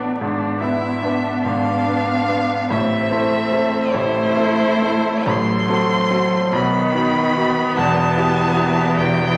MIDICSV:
0, 0, Header, 1, 5, 480
1, 0, Start_track
1, 0, Key_signature, 0, "minor"
1, 0, Tempo, 832178
1, 110, Time_signature, 6, 3, 24, 8
1, 2029, Tempo, 851064
1, 2509, Tempo, 903614
1, 2989, Tempo, 837989
1, 2990, Key_signature, 1, "minor"
1, 3949, Tempo, 811908
1, 5381, End_track
2, 0, Start_track
2, 0, Title_t, "Violin"
2, 0, Program_c, 0, 40
2, 0, Note_on_c, 0, 74, 88
2, 109, Note_off_c, 0, 74, 0
2, 347, Note_on_c, 0, 76, 97
2, 805, Note_off_c, 0, 76, 0
2, 836, Note_on_c, 0, 77, 126
2, 1541, Note_off_c, 0, 77, 0
2, 1560, Note_on_c, 0, 76, 121
2, 2267, Note_on_c, 0, 72, 127
2, 2275, Note_off_c, 0, 76, 0
2, 2990, Note_on_c, 0, 84, 127
2, 2999, Note_off_c, 0, 72, 0
2, 3710, Note_off_c, 0, 84, 0
2, 3714, Note_on_c, 0, 83, 127
2, 4424, Note_off_c, 0, 83, 0
2, 4434, Note_on_c, 0, 81, 127
2, 5135, Note_off_c, 0, 81, 0
2, 5144, Note_on_c, 0, 79, 127
2, 5381, Note_off_c, 0, 79, 0
2, 5381, End_track
3, 0, Start_track
3, 0, Title_t, "Viola"
3, 0, Program_c, 1, 41
3, 0, Note_on_c, 1, 62, 67
3, 85, Note_off_c, 1, 62, 0
3, 108, Note_on_c, 1, 62, 76
3, 347, Note_on_c, 1, 64, 65
3, 356, Note_off_c, 1, 62, 0
3, 590, Note_on_c, 1, 62, 76
3, 598, Note_off_c, 1, 64, 0
3, 1549, Note_off_c, 1, 62, 0
3, 1552, Note_on_c, 1, 60, 83
3, 2267, Note_on_c, 1, 64, 92
3, 2275, Note_off_c, 1, 60, 0
3, 2988, Note_off_c, 1, 64, 0
3, 2991, Note_on_c, 1, 57, 97
3, 3708, Note_on_c, 1, 59, 100
3, 3716, Note_off_c, 1, 57, 0
3, 5381, Note_off_c, 1, 59, 0
3, 5381, End_track
4, 0, Start_track
4, 0, Title_t, "Grand piano"
4, 0, Program_c, 2, 0
4, 0, Control_c, 2, 64, 127
4, 0, Note_on_c, 2, 33, 60
4, 0, Note_on_c, 2, 45, 58
4, 0, Note_on_c, 2, 59, 53
4, 0, Note_on_c, 2, 62, 49
4, 0, Note_on_c, 2, 71, 56
4, 90, Note_off_c, 2, 59, 0
4, 92, Note_off_c, 2, 62, 0
4, 93, Note_off_c, 2, 71, 0
4, 120, Control_c, 2, 64, 0
4, 120, Note_on_c, 2, 44, 78
4, 121, Note_on_c, 2, 32, 65
4, 122, Note_off_c, 2, 45, 0
4, 123, Note_off_c, 2, 33, 0
4, 227, Control_c, 2, 64, 127
4, 350, Note_off_c, 2, 32, 0
4, 350, Note_off_c, 2, 44, 0
4, 362, Note_on_c, 2, 59, 60
4, 363, Note_on_c, 2, 62, 57
4, 366, Note_on_c, 2, 71, 59
4, 575, Note_off_c, 2, 59, 0
4, 575, Note_off_c, 2, 62, 0
4, 577, Note_off_c, 2, 71, 0
4, 599, Note_on_c, 2, 59, 56
4, 600, Note_on_c, 2, 62, 56
4, 605, Note_on_c, 2, 71, 59
4, 811, Note_off_c, 2, 59, 0
4, 811, Note_off_c, 2, 62, 0
4, 814, Note_off_c, 2, 71, 0
4, 833, Note_on_c, 2, 44, 66
4, 836, Note_on_c, 2, 32, 65
4, 1063, Note_off_c, 2, 44, 0
4, 1064, Note_off_c, 2, 32, 0
4, 1076, Note_on_c, 2, 62, 54
4, 1077, Note_on_c, 2, 59, 55
4, 1081, Note_on_c, 2, 71, 66
4, 1291, Note_off_c, 2, 62, 0
4, 1292, Note_off_c, 2, 59, 0
4, 1294, Note_off_c, 2, 71, 0
4, 1319, Note_on_c, 2, 59, 59
4, 1319, Note_on_c, 2, 62, 51
4, 1321, Note_on_c, 2, 71, 59
4, 1534, Note_off_c, 2, 59, 0
4, 1534, Note_off_c, 2, 62, 0
4, 1535, Note_off_c, 2, 71, 0
4, 1558, Note_on_c, 2, 45, 84
4, 1561, Note_on_c, 2, 33, 75
4, 1562, Control_c, 2, 64, 0
4, 1664, Control_c, 2, 64, 127
4, 1787, Note_off_c, 2, 45, 0
4, 1788, Note_off_c, 2, 33, 0
4, 1794, Note_on_c, 2, 60, 64
4, 1800, Note_on_c, 2, 69, 69
4, 1801, Note_on_c, 2, 64, 64
4, 2008, Note_off_c, 2, 60, 0
4, 2011, Note_off_c, 2, 69, 0
4, 2012, Note_off_c, 2, 64, 0
4, 2032, Note_on_c, 2, 60, 65
4, 2034, Note_on_c, 2, 64, 60
4, 2038, Note_on_c, 2, 69, 72
4, 2244, Note_off_c, 2, 60, 0
4, 2245, Note_off_c, 2, 64, 0
4, 2247, Note_off_c, 2, 69, 0
4, 2266, Note_on_c, 2, 45, 70
4, 2270, Note_on_c, 2, 33, 75
4, 2503, Note_off_c, 2, 45, 0
4, 2505, Note_off_c, 2, 33, 0
4, 2509, Note_on_c, 2, 60, 67
4, 2514, Note_on_c, 2, 69, 70
4, 2516, Note_on_c, 2, 64, 65
4, 2730, Note_off_c, 2, 60, 0
4, 2732, Note_off_c, 2, 69, 0
4, 2733, Note_off_c, 2, 64, 0
4, 2749, Note_on_c, 2, 60, 64
4, 2754, Note_on_c, 2, 64, 64
4, 2757, Note_on_c, 2, 69, 70
4, 2968, Note_off_c, 2, 60, 0
4, 2970, Note_off_c, 2, 64, 0
4, 2972, Note_off_c, 2, 69, 0
4, 2983, Note_on_c, 2, 33, 91
4, 2986, Note_on_c, 2, 45, 96
4, 3001, Control_c, 2, 64, 0
4, 3094, Control_c, 2, 64, 127
4, 3222, Note_off_c, 2, 33, 0
4, 3223, Note_off_c, 2, 45, 0
4, 3229, Note_on_c, 2, 60, 73
4, 3233, Note_on_c, 2, 66, 73
4, 3234, Note_on_c, 2, 69, 83
4, 3445, Note_off_c, 2, 60, 0
4, 3447, Note_off_c, 2, 66, 0
4, 3448, Note_off_c, 2, 69, 0
4, 3467, Note_on_c, 2, 60, 73
4, 3469, Note_on_c, 2, 66, 68
4, 3469, Note_on_c, 2, 69, 74
4, 3685, Note_off_c, 2, 60, 0
4, 3686, Note_off_c, 2, 66, 0
4, 3687, Note_off_c, 2, 69, 0
4, 3705, Note_on_c, 2, 47, 82
4, 3708, Note_on_c, 2, 35, 94
4, 3721, Control_c, 2, 64, 0
4, 3805, Control_c, 2, 64, 127
4, 3941, Note_off_c, 2, 47, 0
4, 3942, Note_off_c, 2, 35, 0
4, 3948, Note_on_c, 2, 59, 76
4, 3949, Note_on_c, 2, 63, 74
4, 3953, Note_on_c, 2, 66, 80
4, 4170, Note_off_c, 2, 59, 0
4, 4171, Note_off_c, 2, 63, 0
4, 4173, Note_off_c, 2, 66, 0
4, 4190, Note_on_c, 2, 59, 69
4, 4191, Note_on_c, 2, 63, 72
4, 4196, Note_on_c, 2, 66, 79
4, 4410, Note_off_c, 2, 59, 0
4, 4411, Note_off_c, 2, 63, 0
4, 4413, Note_off_c, 2, 66, 0
4, 4434, Note_on_c, 2, 40, 101
4, 4435, Note_on_c, 2, 28, 100
4, 4446, Control_c, 2, 64, 0
4, 4535, Control_c, 2, 64, 127
4, 4666, Note_off_c, 2, 40, 0
4, 4667, Note_off_c, 2, 28, 0
4, 4671, Note_on_c, 2, 59, 79
4, 4672, Note_on_c, 2, 64, 84
4, 4675, Note_on_c, 2, 67, 80
4, 4886, Note_off_c, 2, 59, 0
4, 4887, Note_off_c, 2, 64, 0
4, 4889, Note_off_c, 2, 67, 0
4, 4902, Note_on_c, 2, 59, 80
4, 4905, Note_on_c, 2, 64, 75
4, 4909, Note_on_c, 2, 67, 85
4, 5122, Note_off_c, 2, 59, 0
4, 5123, Note_off_c, 2, 64, 0
4, 5125, Note_off_c, 2, 67, 0
4, 5141, Note_on_c, 2, 28, 95
4, 5144, Note_on_c, 2, 40, 85
4, 5378, Note_off_c, 2, 28, 0
4, 5380, Note_off_c, 2, 40, 0
4, 5381, End_track
5, 0, Start_track
5, 0, Title_t, "Cello"
5, 0, Program_c, 3, 42
5, 0, Note_on_c, 3, 59, 74
5, 98, Note_off_c, 3, 59, 0
5, 101, Note_on_c, 3, 59, 76
5, 1551, Note_on_c, 3, 57, 76
5, 1559, Note_off_c, 3, 59, 0
5, 2265, Note_off_c, 3, 57, 0
5, 2267, Note_on_c, 3, 57, 99
5, 2976, Note_off_c, 3, 57, 0
5, 2988, Note_on_c, 3, 54, 96
5, 3713, Note_on_c, 3, 51, 107
5, 3722, Note_off_c, 3, 54, 0
5, 4438, Note_off_c, 3, 51, 0
5, 4441, Note_on_c, 3, 52, 106
5, 5381, Note_off_c, 3, 52, 0
5, 5381, End_track
0, 0, End_of_file